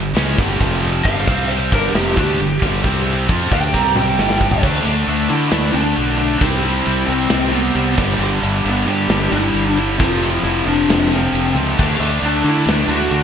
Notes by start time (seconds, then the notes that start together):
Already playing: G1 G2 D3
0.14 C#2 C#3 G#3 C#4, snare, crash
0.37 G1 G2 D3 G3, kick, crash
0.59 F1 F2 C3 F3, kick, crash
0.83 crash
1.04 G1 G2 D3 G3 F5, kick, crash
1.26 C2 C3 G3 C4, kick, crash
1.49 C5, crash
1.71 G1 G2 D3 G3 A#4, kick, crash
1.93 F1 F2 C3 F3 G4, snare, crash
2.17 D2 D3 A3 D4 G4, kick, crash
2.39 G1 G2 D3, crash
2.51 snare
2.61 G1 G2 D3 G3, kick, crash
2.83 C2 C3 G3 C4, kick, crash
3.07 crash
3.29 F2 F3 C4 F4, kick, crash
3.51 D2 D3 A3 D4 G5, kick, crash
3.73 C2 C3 G3 C4 A#5, kick
3.96 G5, mid tom
4.18 G1 G2 D3 G3, snare
4.30 snare
4.41 kick
4.51 floor tom
4.63 D2 D3 A3 D4, kick, crash
4.84 D2 D3 A3 D4, ride
5.07 D2 D3 A3 D4, ride
5.29 D3 A3 D4 E4, ride
5.50 D2 D3 A3 D4 E4, snare, ride
5.73 D2 D3 A3 D4, ride
5.95 B1 D3 A3 D4, ride
6.17 D3 A3 D4, ride
6.39 C2 C3 G3 C4 E4, kick, ride
6.62 C3 G3 C4, ride
6.85 C2 C3 G3 C4, ride
7.06 C2 C3 G3 C4, ride
7.29 C2 C3 G3 C4, snare, ride
7.51 C3 G3 B3 C4, ride
7.74 C2 C3 G3 C4, ride
7.95 G1 G2 D3 G3, kick, crash
8.18 G1 G2 D3 G3
8.40 G1 G2 D3 G3, ride
8.64 G1 G2 D3 G3, ride
8.69 B3
8.86 G2 D3 G3 G4, ride
9.08 G1 G2 D3 G3, snare, ride
9.32 G1 G2 D3 G3 E4, ride
9.54 G1 G2 D3 G3, ride
9.77 G2 D3 G3 E4, ride
9.99 F1 F2 C3 F3 F4, kick, ride
10.22 F2 C3 F3, ride
10.43 F1 F2 C3 F3 E4, ride
10.66 F1 F2 C3 F3 D4, ride
10.89 F1 F2 C3 F3, snare, ride
11.12 F2 C3 F3 C4, ride
11.33 F1 F2 C3 F3, ride
11.55 C#2 F2 C3 F3, ride
11.78 D2 D3 A3 D4, kick, crash
11.99 D2 D3 A3 D4, ride
12.21 D2 D3 A3 D4, ride
12.26 D4
12.43 D3 A3 D4, ride
12.49 E4
12.66 D2 D3 A3 D4, snare, ride
12.88 D2 D3 A3 D4 F#4, ride
13.01 snare
13.10 D2 D3 A3 D4 F#4, ride